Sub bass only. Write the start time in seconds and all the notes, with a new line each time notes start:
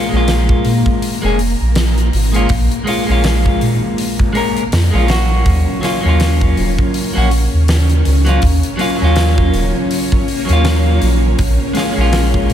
0.12 A#1
0.65 A#2
1.23 F1
1.61 A#1
2.13 G#1
2.50 A#1
3.09 A#1
3.61 A#2
4.72 F2
4.94 A#1
5.46 D#2
6.05 D#2
6.58 D#1
7.16 A#1
7.53 D#2
8.06 C#2
8.43 D#2
9.01 D#2
9.54 D#1
10.49 D#2
11.02 A#1
11.39 A#1
11.97 A#1
12.50 A#2